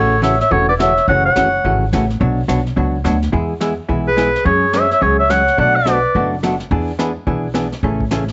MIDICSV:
0, 0, Header, 1, 6, 480
1, 0, Start_track
1, 0, Tempo, 281558
1, 1839, Time_signature, 4, 2, 24, 8
1, 14191, End_track
2, 0, Start_track
2, 0, Title_t, "Oboe"
2, 0, Program_c, 0, 68
2, 0, Note_on_c, 0, 73, 79
2, 366, Note_off_c, 0, 73, 0
2, 392, Note_on_c, 0, 76, 84
2, 671, Note_off_c, 0, 76, 0
2, 691, Note_on_c, 0, 76, 98
2, 881, Note_on_c, 0, 73, 88
2, 906, Note_off_c, 0, 76, 0
2, 1161, Note_off_c, 0, 73, 0
2, 1171, Note_on_c, 0, 74, 96
2, 1255, Note_off_c, 0, 74, 0
2, 1358, Note_on_c, 0, 76, 97
2, 1805, Note_off_c, 0, 76, 0
2, 1847, Note_on_c, 0, 78, 98
2, 2119, Note_off_c, 0, 78, 0
2, 2138, Note_on_c, 0, 78, 91
2, 3030, Note_off_c, 0, 78, 0
2, 6946, Note_on_c, 0, 71, 79
2, 7559, Note_off_c, 0, 71, 0
2, 7606, Note_on_c, 0, 73, 84
2, 8080, Note_on_c, 0, 76, 83
2, 8105, Note_off_c, 0, 73, 0
2, 8376, Note_off_c, 0, 76, 0
2, 8388, Note_on_c, 0, 76, 93
2, 8562, Note_on_c, 0, 73, 77
2, 8587, Note_off_c, 0, 76, 0
2, 8840, Note_off_c, 0, 73, 0
2, 8851, Note_on_c, 0, 76, 97
2, 9044, Note_on_c, 0, 78, 92
2, 9070, Note_off_c, 0, 76, 0
2, 9522, Note_off_c, 0, 78, 0
2, 9542, Note_on_c, 0, 78, 101
2, 9816, Note_on_c, 0, 74, 88
2, 9841, Note_off_c, 0, 78, 0
2, 10775, Note_off_c, 0, 74, 0
2, 14191, End_track
3, 0, Start_track
3, 0, Title_t, "Clarinet"
3, 0, Program_c, 1, 71
3, 0, Note_on_c, 1, 69, 80
3, 367, Note_off_c, 1, 69, 0
3, 391, Note_on_c, 1, 73, 71
3, 670, Note_off_c, 1, 73, 0
3, 713, Note_on_c, 1, 73, 76
3, 881, Note_on_c, 1, 69, 69
3, 907, Note_off_c, 1, 73, 0
3, 1176, Note_off_c, 1, 69, 0
3, 1188, Note_on_c, 1, 71, 66
3, 1268, Note_off_c, 1, 71, 0
3, 1388, Note_on_c, 1, 73, 82
3, 1821, Note_off_c, 1, 73, 0
3, 1868, Note_on_c, 1, 73, 86
3, 2130, Note_off_c, 1, 73, 0
3, 2146, Note_on_c, 1, 73, 74
3, 3034, Note_off_c, 1, 73, 0
3, 6940, Note_on_c, 1, 68, 60
3, 7556, Note_off_c, 1, 68, 0
3, 7609, Note_on_c, 1, 68, 77
3, 8087, Note_on_c, 1, 73, 78
3, 8113, Note_off_c, 1, 68, 0
3, 8379, Note_off_c, 1, 73, 0
3, 8407, Note_on_c, 1, 73, 68
3, 8570, Note_on_c, 1, 68, 74
3, 8595, Note_off_c, 1, 73, 0
3, 8849, Note_off_c, 1, 68, 0
3, 8860, Note_on_c, 1, 73, 77
3, 9061, Note_off_c, 1, 73, 0
3, 9061, Note_on_c, 1, 73, 81
3, 9524, Note_off_c, 1, 73, 0
3, 9534, Note_on_c, 1, 74, 89
3, 9834, Note_on_c, 1, 71, 78
3, 9860, Note_off_c, 1, 74, 0
3, 10785, Note_off_c, 1, 71, 0
3, 14191, End_track
4, 0, Start_track
4, 0, Title_t, "Hollow-body jazz guitar"
4, 0, Program_c, 2, 26
4, 0, Note_on_c, 2, 49, 49
4, 0, Note_on_c, 2, 52, 50
4, 0, Note_on_c, 2, 57, 55
4, 0, Note_on_c, 2, 61, 56
4, 0, Note_on_c, 2, 66, 63
4, 248, Note_off_c, 2, 49, 0
4, 248, Note_off_c, 2, 52, 0
4, 254, Note_off_c, 2, 57, 0
4, 255, Note_off_c, 2, 61, 0
4, 257, Note_off_c, 2, 66, 0
4, 371, Note_on_c, 2, 49, 71
4, 374, Note_on_c, 2, 52, 74
4, 376, Note_on_c, 2, 57, 76
4, 385, Note_on_c, 2, 61, 74
4, 388, Note_on_c, 2, 66, 78
4, 574, Note_off_c, 2, 49, 0
4, 576, Note_off_c, 2, 52, 0
4, 577, Note_off_c, 2, 57, 0
4, 581, Note_off_c, 2, 61, 0
4, 583, Note_off_c, 2, 66, 0
4, 865, Note_on_c, 2, 49, 48
4, 869, Note_on_c, 2, 52, 58
4, 869, Note_on_c, 2, 57, 57
4, 869, Note_on_c, 2, 61, 52
4, 875, Note_on_c, 2, 66, 59
4, 1206, Note_off_c, 2, 49, 0
4, 1208, Note_off_c, 2, 52, 0
4, 1208, Note_off_c, 2, 57, 0
4, 1208, Note_off_c, 2, 61, 0
4, 1211, Note_off_c, 2, 66, 0
4, 1350, Note_on_c, 2, 49, 61
4, 1354, Note_on_c, 2, 52, 73
4, 1359, Note_on_c, 2, 61, 72
4, 1363, Note_on_c, 2, 57, 82
4, 1364, Note_on_c, 2, 66, 75
4, 1544, Note_off_c, 2, 49, 0
4, 1546, Note_off_c, 2, 52, 0
4, 1549, Note_off_c, 2, 61, 0
4, 1551, Note_off_c, 2, 57, 0
4, 1551, Note_off_c, 2, 66, 0
4, 1856, Note_on_c, 2, 49, 52
4, 1862, Note_on_c, 2, 52, 61
4, 1863, Note_on_c, 2, 57, 52
4, 1870, Note_on_c, 2, 61, 56
4, 1880, Note_on_c, 2, 66, 65
4, 2182, Note_off_c, 2, 49, 0
4, 2185, Note_off_c, 2, 52, 0
4, 2185, Note_off_c, 2, 57, 0
4, 2189, Note_off_c, 2, 61, 0
4, 2194, Note_off_c, 2, 66, 0
4, 2314, Note_on_c, 2, 49, 67
4, 2319, Note_on_c, 2, 57, 68
4, 2324, Note_on_c, 2, 52, 72
4, 2332, Note_on_c, 2, 66, 80
4, 2333, Note_on_c, 2, 61, 70
4, 2506, Note_off_c, 2, 49, 0
4, 2509, Note_off_c, 2, 57, 0
4, 2511, Note_off_c, 2, 52, 0
4, 2515, Note_off_c, 2, 61, 0
4, 2515, Note_off_c, 2, 66, 0
4, 2805, Note_on_c, 2, 49, 54
4, 2814, Note_on_c, 2, 57, 52
4, 2814, Note_on_c, 2, 61, 54
4, 2815, Note_on_c, 2, 52, 52
4, 2823, Note_on_c, 2, 66, 60
4, 3136, Note_off_c, 2, 49, 0
4, 3141, Note_off_c, 2, 57, 0
4, 3141, Note_off_c, 2, 61, 0
4, 3142, Note_off_c, 2, 52, 0
4, 3146, Note_off_c, 2, 66, 0
4, 3285, Note_on_c, 2, 49, 66
4, 3289, Note_on_c, 2, 52, 64
4, 3299, Note_on_c, 2, 61, 73
4, 3301, Note_on_c, 2, 57, 79
4, 3301, Note_on_c, 2, 66, 73
4, 3472, Note_off_c, 2, 49, 0
4, 3474, Note_off_c, 2, 52, 0
4, 3479, Note_off_c, 2, 57, 0
4, 3479, Note_off_c, 2, 61, 0
4, 3479, Note_off_c, 2, 66, 0
4, 3752, Note_on_c, 2, 47, 53
4, 3765, Note_on_c, 2, 54, 60
4, 3765, Note_on_c, 2, 59, 52
4, 3767, Note_on_c, 2, 66, 54
4, 3768, Note_on_c, 2, 73, 60
4, 3769, Note_on_c, 2, 62, 64
4, 4090, Note_off_c, 2, 47, 0
4, 4097, Note_off_c, 2, 54, 0
4, 4097, Note_off_c, 2, 59, 0
4, 4098, Note_off_c, 2, 66, 0
4, 4098, Note_off_c, 2, 73, 0
4, 4099, Note_off_c, 2, 62, 0
4, 4233, Note_on_c, 2, 54, 68
4, 4233, Note_on_c, 2, 66, 74
4, 4234, Note_on_c, 2, 47, 73
4, 4234, Note_on_c, 2, 59, 67
4, 4240, Note_on_c, 2, 62, 82
4, 4245, Note_on_c, 2, 73, 78
4, 4426, Note_off_c, 2, 47, 0
4, 4426, Note_off_c, 2, 54, 0
4, 4426, Note_off_c, 2, 66, 0
4, 4427, Note_off_c, 2, 59, 0
4, 4429, Note_off_c, 2, 62, 0
4, 4432, Note_off_c, 2, 73, 0
4, 4708, Note_on_c, 2, 47, 53
4, 4714, Note_on_c, 2, 54, 54
4, 4717, Note_on_c, 2, 59, 50
4, 4720, Note_on_c, 2, 73, 62
4, 4724, Note_on_c, 2, 66, 57
4, 4729, Note_on_c, 2, 62, 52
4, 5048, Note_off_c, 2, 47, 0
4, 5051, Note_off_c, 2, 54, 0
4, 5053, Note_off_c, 2, 59, 0
4, 5054, Note_off_c, 2, 73, 0
4, 5056, Note_off_c, 2, 66, 0
4, 5059, Note_off_c, 2, 62, 0
4, 5186, Note_on_c, 2, 54, 67
4, 5192, Note_on_c, 2, 47, 73
4, 5193, Note_on_c, 2, 66, 67
4, 5194, Note_on_c, 2, 59, 62
4, 5194, Note_on_c, 2, 62, 71
4, 5198, Note_on_c, 2, 73, 78
4, 5382, Note_off_c, 2, 54, 0
4, 5385, Note_off_c, 2, 47, 0
4, 5386, Note_off_c, 2, 59, 0
4, 5386, Note_off_c, 2, 62, 0
4, 5386, Note_off_c, 2, 66, 0
4, 5389, Note_off_c, 2, 73, 0
4, 5665, Note_on_c, 2, 52, 52
4, 5669, Note_on_c, 2, 64, 49
4, 5671, Note_on_c, 2, 56, 50
4, 5674, Note_on_c, 2, 59, 57
4, 5680, Note_on_c, 2, 68, 61
4, 6007, Note_off_c, 2, 52, 0
4, 6009, Note_off_c, 2, 64, 0
4, 6010, Note_off_c, 2, 56, 0
4, 6011, Note_off_c, 2, 59, 0
4, 6014, Note_off_c, 2, 68, 0
4, 6146, Note_on_c, 2, 52, 72
4, 6151, Note_on_c, 2, 56, 84
4, 6161, Note_on_c, 2, 59, 71
4, 6164, Note_on_c, 2, 64, 83
4, 6175, Note_on_c, 2, 68, 76
4, 6342, Note_off_c, 2, 52, 0
4, 6345, Note_off_c, 2, 56, 0
4, 6350, Note_off_c, 2, 59, 0
4, 6351, Note_off_c, 2, 64, 0
4, 6357, Note_off_c, 2, 68, 0
4, 6623, Note_on_c, 2, 56, 50
4, 6626, Note_on_c, 2, 59, 54
4, 6627, Note_on_c, 2, 52, 56
4, 6633, Note_on_c, 2, 64, 54
4, 6638, Note_on_c, 2, 68, 63
4, 6966, Note_off_c, 2, 56, 0
4, 6967, Note_off_c, 2, 59, 0
4, 6968, Note_off_c, 2, 52, 0
4, 6971, Note_off_c, 2, 64, 0
4, 6973, Note_off_c, 2, 68, 0
4, 7104, Note_on_c, 2, 56, 76
4, 7108, Note_on_c, 2, 52, 69
4, 7114, Note_on_c, 2, 59, 65
4, 7118, Note_on_c, 2, 64, 74
4, 7122, Note_on_c, 2, 68, 74
4, 7301, Note_off_c, 2, 56, 0
4, 7303, Note_off_c, 2, 52, 0
4, 7307, Note_off_c, 2, 59, 0
4, 7308, Note_off_c, 2, 64, 0
4, 7310, Note_off_c, 2, 68, 0
4, 7583, Note_on_c, 2, 54, 59
4, 7588, Note_on_c, 2, 56, 47
4, 7590, Note_on_c, 2, 61, 53
4, 7595, Note_on_c, 2, 73, 58
4, 7598, Note_on_c, 2, 68, 51
4, 7926, Note_off_c, 2, 54, 0
4, 7928, Note_off_c, 2, 56, 0
4, 7929, Note_off_c, 2, 61, 0
4, 7932, Note_off_c, 2, 73, 0
4, 7933, Note_off_c, 2, 68, 0
4, 8072, Note_on_c, 2, 54, 69
4, 8078, Note_on_c, 2, 56, 82
4, 8087, Note_on_c, 2, 61, 78
4, 8090, Note_on_c, 2, 68, 82
4, 8090, Note_on_c, 2, 73, 73
4, 8265, Note_off_c, 2, 54, 0
4, 8268, Note_off_c, 2, 56, 0
4, 8273, Note_off_c, 2, 61, 0
4, 8274, Note_off_c, 2, 68, 0
4, 8274, Note_off_c, 2, 73, 0
4, 8541, Note_on_c, 2, 61, 56
4, 8543, Note_on_c, 2, 56, 51
4, 8544, Note_on_c, 2, 54, 53
4, 8560, Note_on_c, 2, 68, 53
4, 8561, Note_on_c, 2, 73, 61
4, 8884, Note_off_c, 2, 61, 0
4, 8886, Note_off_c, 2, 54, 0
4, 8886, Note_off_c, 2, 56, 0
4, 8894, Note_off_c, 2, 68, 0
4, 8895, Note_off_c, 2, 73, 0
4, 9030, Note_on_c, 2, 54, 69
4, 9035, Note_on_c, 2, 56, 76
4, 9035, Note_on_c, 2, 61, 68
4, 9037, Note_on_c, 2, 73, 77
4, 9045, Note_on_c, 2, 68, 77
4, 9224, Note_off_c, 2, 54, 0
4, 9227, Note_off_c, 2, 56, 0
4, 9227, Note_off_c, 2, 61, 0
4, 9228, Note_off_c, 2, 73, 0
4, 9232, Note_off_c, 2, 68, 0
4, 9506, Note_on_c, 2, 54, 59
4, 9508, Note_on_c, 2, 47, 50
4, 9514, Note_on_c, 2, 62, 58
4, 9518, Note_on_c, 2, 66, 56
4, 9519, Note_on_c, 2, 57, 55
4, 9847, Note_off_c, 2, 54, 0
4, 9848, Note_off_c, 2, 47, 0
4, 9851, Note_off_c, 2, 62, 0
4, 9853, Note_off_c, 2, 57, 0
4, 9853, Note_off_c, 2, 66, 0
4, 9978, Note_on_c, 2, 47, 83
4, 9985, Note_on_c, 2, 54, 71
4, 9987, Note_on_c, 2, 62, 79
4, 9988, Note_on_c, 2, 57, 71
4, 10003, Note_on_c, 2, 66, 80
4, 10178, Note_off_c, 2, 47, 0
4, 10181, Note_off_c, 2, 54, 0
4, 10182, Note_off_c, 2, 62, 0
4, 10183, Note_off_c, 2, 57, 0
4, 10190, Note_off_c, 2, 66, 0
4, 10490, Note_on_c, 2, 54, 50
4, 10490, Note_on_c, 2, 57, 58
4, 10491, Note_on_c, 2, 47, 50
4, 10497, Note_on_c, 2, 66, 61
4, 10503, Note_on_c, 2, 62, 52
4, 10818, Note_off_c, 2, 57, 0
4, 10819, Note_off_c, 2, 47, 0
4, 10819, Note_off_c, 2, 54, 0
4, 10822, Note_off_c, 2, 66, 0
4, 10825, Note_off_c, 2, 62, 0
4, 10964, Note_on_c, 2, 54, 73
4, 10968, Note_on_c, 2, 47, 70
4, 10972, Note_on_c, 2, 57, 73
4, 10982, Note_on_c, 2, 62, 74
4, 10984, Note_on_c, 2, 66, 75
4, 11151, Note_off_c, 2, 54, 0
4, 11152, Note_off_c, 2, 47, 0
4, 11155, Note_off_c, 2, 57, 0
4, 11160, Note_off_c, 2, 62, 0
4, 11160, Note_off_c, 2, 66, 0
4, 11439, Note_on_c, 2, 52, 48
4, 11440, Note_on_c, 2, 59, 50
4, 11453, Note_on_c, 2, 62, 58
4, 11454, Note_on_c, 2, 68, 62
4, 11772, Note_off_c, 2, 52, 0
4, 11773, Note_off_c, 2, 59, 0
4, 11779, Note_off_c, 2, 62, 0
4, 11780, Note_off_c, 2, 68, 0
4, 11912, Note_on_c, 2, 52, 79
4, 11918, Note_on_c, 2, 62, 71
4, 11923, Note_on_c, 2, 59, 82
4, 11931, Note_on_c, 2, 68, 83
4, 12104, Note_off_c, 2, 52, 0
4, 12107, Note_off_c, 2, 62, 0
4, 12110, Note_off_c, 2, 59, 0
4, 12113, Note_off_c, 2, 68, 0
4, 12390, Note_on_c, 2, 52, 61
4, 12393, Note_on_c, 2, 59, 45
4, 12397, Note_on_c, 2, 62, 55
4, 12401, Note_on_c, 2, 68, 60
4, 12728, Note_off_c, 2, 52, 0
4, 12729, Note_off_c, 2, 59, 0
4, 12731, Note_off_c, 2, 62, 0
4, 12733, Note_off_c, 2, 68, 0
4, 12852, Note_on_c, 2, 52, 66
4, 12862, Note_on_c, 2, 59, 72
4, 12867, Note_on_c, 2, 62, 64
4, 12872, Note_on_c, 2, 68, 74
4, 13054, Note_off_c, 2, 52, 0
4, 13059, Note_off_c, 2, 59, 0
4, 13061, Note_off_c, 2, 62, 0
4, 13064, Note_off_c, 2, 68, 0
4, 13357, Note_on_c, 2, 52, 57
4, 13358, Note_on_c, 2, 49, 60
4, 13367, Note_on_c, 2, 61, 52
4, 13370, Note_on_c, 2, 57, 64
4, 13372, Note_on_c, 2, 68, 61
4, 13691, Note_off_c, 2, 49, 0
4, 13691, Note_off_c, 2, 52, 0
4, 13695, Note_off_c, 2, 61, 0
4, 13697, Note_off_c, 2, 57, 0
4, 13698, Note_off_c, 2, 68, 0
4, 13826, Note_on_c, 2, 49, 73
4, 13840, Note_on_c, 2, 52, 63
4, 13841, Note_on_c, 2, 57, 79
4, 13844, Note_on_c, 2, 61, 82
4, 13847, Note_on_c, 2, 68, 77
4, 14020, Note_off_c, 2, 49, 0
4, 14027, Note_off_c, 2, 52, 0
4, 14028, Note_off_c, 2, 57, 0
4, 14029, Note_off_c, 2, 61, 0
4, 14031, Note_off_c, 2, 68, 0
4, 14191, End_track
5, 0, Start_track
5, 0, Title_t, "Upright bass"
5, 0, Program_c, 3, 32
5, 0, Note_on_c, 3, 33, 80
5, 683, Note_off_c, 3, 33, 0
5, 875, Note_on_c, 3, 28, 80
5, 1645, Note_off_c, 3, 28, 0
5, 1835, Note_on_c, 3, 30, 92
5, 2221, Note_off_c, 3, 30, 0
5, 2323, Note_on_c, 3, 30, 79
5, 2730, Note_off_c, 3, 30, 0
5, 2805, Note_on_c, 3, 32, 76
5, 3211, Note_off_c, 3, 32, 0
5, 3284, Note_on_c, 3, 33, 92
5, 3690, Note_off_c, 3, 33, 0
5, 3761, Note_on_c, 3, 35, 99
5, 4145, Note_off_c, 3, 35, 0
5, 4230, Note_on_c, 3, 35, 78
5, 4643, Note_off_c, 3, 35, 0
5, 4719, Note_on_c, 3, 37, 75
5, 5128, Note_off_c, 3, 37, 0
5, 5193, Note_on_c, 3, 38, 105
5, 5605, Note_off_c, 3, 38, 0
5, 5677, Note_on_c, 3, 40, 92
5, 6447, Note_off_c, 3, 40, 0
5, 6638, Note_on_c, 3, 35, 70
5, 7407, Note_off_c, 3, 35, 0
5, 7595, Note_on_c, 3, 42, 95
5, 8365, Note_off_c, 3, 42, 0
5, 8559, Note_on_c, 3, 37, 73
5, 9327, Note_off_c, 3, 37, 0
5, 9516, Note_on_c, 3, 35, 90
5, 10285, Note_off_c, 3, 35, 0
5, 10484, Note_on_c, 3, 30, 80
5, 11250, Note_off_c, 3, 30, 0
5, 11438, Note_on_c, 3, 40, 98
5, 12205, Note_off_c, 3, 40, 0
5, 12390, Note_on_c, 3, 35, 76
5, 13161, Note_off_c, 3, 35, 0
5, 13346, Note_on_c, 3, 33, 83
5, 14117, Note_off_c, 3, 33, 0
5, 14191, End_track
6, 0, Start_track
6, 0, Title_t, "Drums"
6, 395, Note_on_c, 9, 38, 72
6, 395, Note_on_c, 9, 44, 53
6, 565, Note_off_c, 9, 38, 0
6, 565, Note_off_c, 9, 44, 0
6, 693, Note_on_c, 9, 38, 38
6, 864, Note_off_c, 9, 38, 0
6, 875, Note_on_c, 9, 36, 35
6, 878, Note_on_c, 9, 25, 46
6, 1045, Note_off_c, 9, 36, 0
6, 1360, Note_on_c, 9, 38, 71
6, 1360, Note_on_c, 9, 44, 65
6, 1530, Note_off_c, 9, 38, 0
6, 1530, Note_off_c, 9, 44, 0
6, 1654, Note_on_c, 9, 38, 35
6, 1825, Note_off_c, 9, 38, 0
6, 1837, Note_on_c, 9, 36, 33
6, 1839, Note_off_c, 9, 25, 0
6, 1839, Note_on_c, 9, 25, 50
6, 2007, Note_off_c, 9, 36, 0
6, 2313, Note_on_c, 9, 38, 74
6, 2313, Note_on_c, 9, 44, 62
6, 2484, Note_off_c, 9, 38, 0
6, 2484, Note_off_c, 9, 44, 0
6, 2799, Note_on_c, 9, 36, 34
6, 2801, Note_off_c, 9, 25, 0
6, 2801, Note_on_c, 9, 25, 45
6, 2969, Note_off_c, 9, 36, 0
6, 3287, Note_on_c, 9, 38, 62
6, 3287, Note_on_c, 9, 44, 56
6, 3457, Note_off_c, 9, 38, 0
6, 3457, Note_off_c, 9, 44, 0
6, 3581, Note_on_c, 9, 38, 38
6, 3751, Note_off_c, 9, 38, 0
6, 3760, Note_on_c, 9, 36, 33
6, 3770, Note_off_c, 9, 25, 0
6, 3770, Note_on_c, 9, 25, 55
6, 3930, Note_off_c, 9, 36, 0
6, 4240, Note_on_c, 9, 38, 78
6, 4240, Note_on_c, 9, 44, 52
6, 4411, Note_off_c, 9, 38, 0
6, 4411, Note_off_c, 9, 44, 0
6, 4542, Note_on_c, 9, 38, 33
6, 4713, Note_off_c, 9, 38, 0
6, 4720, Note_on_c, 9, 36, 33
6, 4722, Note_off_c, 9, 25, 0
6, 4722, Note_on_c, 9, 25, 45
6, 4890, Note_off_c, 9, 36, 0
6, 5205, Note_on_c, 9, 38, 64
6, 5205, Note_on_c, 9, 44, 53
6, 5375, Note_off_c, 9, 38, 0
6, 5375, Note_off_c, 9, 44, 0
6, 5495, Note_on_c, 9, 38, 36
6, 5665, Note_off_c, 9, 38, 0
6, 5676, Note_on_c, 9, 36, 34
6, 5684, Note_off_c, 9, 25, 0
6, 5684, Note_on_c, 9, 25, 46
6, 5847, Note_off_c, 9, 36, 0
6, 6150, Note_on_c, 9, 38, 72
6, 6150, Note_on_c, 9, 44, 63
6, 6321, Note_off_c, 9, 38, 0
6, 6321, Note_off_c, 9, 44, 0
6, 6634, Note_on_c, 9, 36, 36
6, 6637, Note_off_c, 9, 25, 0
6, 6637, Note_on_c, 9, 25, 43
6, 6804, Note_off_c, 9, 36, 0
6, 7119, Note_on_c, 9, 38, 67
6, 7119, Note_on_c, 9, 44, 47
6, 7290, Note_off_c, 9, 38, 0
6, 7290, Note_off_c, 9, 44, 0
6, 7421, Note_on_c, 9, 38, 39
6, 7591, Note_off_c, 9, 38, 0
6, 7592, Note_off_c, 9, 25, 0
6, 7592, Note_on_c, 9, 25, 48
6, 7594, Note_on_c, 9, 36, 34
6, 7765, Note_off_c, 9, 36, 0
6, 8065, Note_on_c, 9, 38, 68
6, 8065, Note_on_c, 9, 44, 50
6, 8235, Note_off_c, 9, 38, 0
6, 8235, Note_off_c, 9, 44, 0
6, 8371, Note_on_c, 9, 38, 37
6, 8542, Note_off_c, 9, 38, 0
6, 8556, Note_on_c, 9, 36, 34
6, 8560, Note_off_c, 9, 25, 0
6, 8560, Note_on_c, 9, 25, 46
6, 8727, Note_off_c, 9, 36, 0
6, 9034, Note_on_c, 9, 38, 71
6, 9034, Note_on_c, 9, 44, 61
6, 9205, Note_off_c, 9, 38, 0
6, 9205, Note_off_c, 9, 44, 0
6, 9337, Note_on_c, 9, 38, 36
6, 9507, Note_off_c, 9, 38, 0
6, 9515, Note_on_c, 9, 36, 34
6, 9519, Note_off_c, 9, 25, 0
6, 9519, Note_on_c, 9, 25, 58
6, 9685, Note_off_c, 9, 36, 0
6, 9999, Note_on_c, 9, 38, 73
6, 9999, Note_on_c, 9, 44, 65
6, 10169, Note_off_c, 9, 38, 0
6, 10169, Note_off_c, 9, 44, 0
6, 10479, Note_off_c, 9, 25, 0
6, 10479, Note_on_c, 9, 25, 46
6, 10479, Note_on_c, 9, 36, 37
6, 10649, Note_off_c, 9, 36, 0
6, 10963, Note_on_c, 9, 38, 64
6, 10963, Note_on_c, 9, 44, 54
6, 11133, Note_off_c, 9, 38, 0
6, 11133, Note_off_c, 9, 44, 0
6, 11250, Note_on_c, 9, 38, 41
6, 11420, Note_off_c, 9, 38, 0
6, 11436, Note_off_c, 9, 25, 0
6, 11436, Note_on_c, 9, 25, 50
6, 11436, Note_on_c, 9, 36, 32
6, 11607, Note_off_c, 9, 36, 0
6, 11914, Note_on_c, 9, 38, 71
6, 11914, Note_on_c, 9, 44, 63
6, 12085, Note_off_c, 9, 38, 0
6, 12085, Note_off_c, 9, 44, 0
6, 12389, Note_off_c, 9, 25, 0
6, 12389, Note_on_c, 9, 25, 41
6, 12392, Note_on_c, 9, 36, 35
6, 12562, Note_off_c, 9, 36, 0
6, 12860, Note_on_c, 9, 38, 66
6, 12860, Note_on_c, 9, 44, 54
6, 13031, Note_off_c, 9, 38, 0
6, 13031, Note_off_c, 9, 44, 0
6, 13165, Note_on_c, 9, 38, 39
6, 13335, Note_off_c, 9, 38, 0
6, 13343, Note_off_c, 9, 25, 0
6, 13343, Note_on_c, 9, 25, 49
6, 13348, Note_on_c, 9, 36, 37
6, 13519, Note_off_c, 9, 36, 0
6, 13646, Note_on_c, 9, 36, 50
6, 13817, Note_off_c, 9, 36, 0
6, 13823, Note_on_c, 9, 38, 72
6, 13823, Note_on_c, 9, 44, 64
6, 13993, Note_off_c, 9, 38, 0
6, 13993, Note_off_c, 9, 44, 0
6, 14119, Note_on_c, 9, 38, 41
6, 14191, Note_off_c, 9, 25, 0
6, 14191, Note_off_c, 9, 38, 0
6, 14191, End_track
0, 0, End_of_file